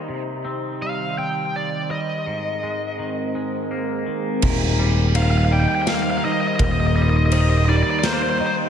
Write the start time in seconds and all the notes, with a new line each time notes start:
Already playing: D#4 C5
0.08 C3 D#3
0.45 C4
0.82 G3 F5
1.18 C4 G5
1.56 D5
1.90 G3 D#5
2.26 G#2 G#3 C4 A#4
2.63 G#3
2.99 D#3
3.35 G#3
3.71 A#3
4.06 D#3
4.42 D#1 D#2 G3 D#4 A#4 C5, kick, crash
4.79 G3
5.15 D#3 C5 F5, ride
5.22 F5
5.31 F5
5.38 F5
5.45 F5
5.51 G3 D#5 G5
5.60 G5
5.69 G5
5.75 G5
5.82 G5
5.87 A#3 F5, snare, ride
5.95 F5
6.02 F5
6.10 F5
6.18 F5
6.24 D#3 D#5
6.32 D#5
6.41 D#5
6.47 D#5
6.56 D#1 A#4 D#5, kick, ride
6.60 D#2
6.64 D#5
6.72 D#5
6.80 D#5
6.87 D#5
6.96 G3 D#5
7.02 D#5
7.09 D#5
7.17 D#5
7.26 D#5
7.32 D#3 C5 D#5, ride
7.41 D#5
7.50 D#5
7.57 D#5
7.65 G3 D#4 D5 D#5
7.76 D5
7.83 D5
7.90 D5
7.99 D5
8.03 A#3 C5, snare, ride
8.13 C5
8.22 C5
8.29 C5
8.38 D#3 C5 D#5
8.46 C5